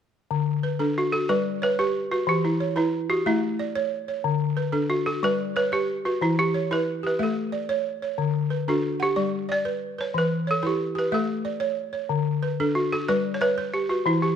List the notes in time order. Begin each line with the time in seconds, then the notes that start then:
0.31 D3
0.63 B4
0.79 D4 A4
0.98 F#4
1.12 F#4 A4
1.29 G3 B4 D5
1.62 B4 C#5
1.79 G4 B4
2.11 F#4 B4
2.27 E3 G4
2.45 E4
2.60 C#5
2.76 E4 B4
3.10 F#4 G4
3.26 A3 E4 E5
3.59 D5
3.76 C#5
4.08 C#5
4.24 D3
4.57 B4
4.72 D4 A4
4.90 F#4
5.06 F#4 A4
5.23 G3 B4 D5
5.56 B4 C#5
5.72 G4 B4
6.05 F#4 B4
6.21 E3 E4
6.39 G4
6.54 C#5
6.71 E4 B4
7.03 G4 B4
7.19 A3 A4 E5
7.52 D5
7.69 C#5
8.02 C#5
8.18 D3
8.50 B4
8.68 D4 F#4 A4
9.00 G4 F#5
9.16 G3 D5
9.49 D5
9.65 B4
9.98 B4 C#5
10.14 E3 B4
10.47 A4 C#5
10.63 E4 G4 B4
10.95 G4 B4
11.12 A3 A4 E5
11.45 D5
11.60 C#5
11.93 C#5
12.09 D3
12.43 B4
12.60 D4 A4
12.75 F#4
12.92 F#4 A4
13.08 G3 B4 D5
13.34 C#5
13.41 B4 C#5
13.58 B4
13.74 G4
13.89 F#4 B4
14.06 E3 E4
14.22 G4